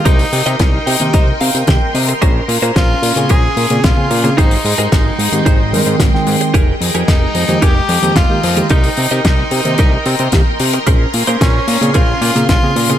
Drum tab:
HH |xooxx-oxx-oxx-ox|x-oxx-oxx-oxx-ox|xooxx-oxx-oxx-ox|x-oxx-oxx-oxx-ox|
SD |----o-------o---|----o-------o---|----o-------oo--|----o-------o---|
BD |o---o---o---o---|o---o---o---o---|o---o---o---o---|o---o---o---o---|

HH |xooxx-oxx-oxx-ox|x-oxx-oxx-oxx-ox|
SD |----o-------o---|----o-------o---|
BD |o---o---o---o---|o---o---o---o---|